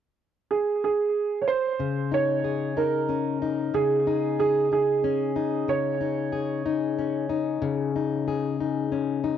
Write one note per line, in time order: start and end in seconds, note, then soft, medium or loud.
0.51 0.83 G#4 soft
0.84 1.37 G#4 soft
1.42 1.48 C#5 soft
1.48 2.08 C5 medium
1.80 3.73 C#3 soft
2.12 2.76 D#4 soft
2.12 2.80 C#5 medium
2.44 4.39 G#4 soft
2.77 3.42 D#4 soft
2.77 3.70 A#4 soft
3.09 5.04 C#4 soft
3.42 4.07 D#4 soft
3.74 5.67 C#3 soft
3.74 4.38 G#4 medium
4.07 4.71 D#4 soft
4.39 6.32 G#4 soft
4.39 4.71 G#4 soft
4.72 5.36 D#4 soft
4.72 5.72 G#4 soft
5.04 6.98 C#4 soft
5.36 6.00 D#4 soft
5.68 7.60 C#3 soft
5.68 8.88 C#5 medium
6.01 6.65 D#4 soft
6.32 8.27 G#4 soft
6.65 7.29 D#4 soft
6.98 8.91 C#4 soft
7.29 7.95 D#4 soft
7.62 9.38 C#3 medium
7.96 8.60 D#4 soft
8.28 9.38 G#4 soft
8.60 9.23 D#4 soft
8.92 9.38 C#4 soft
9.24 9.38 D#4 soft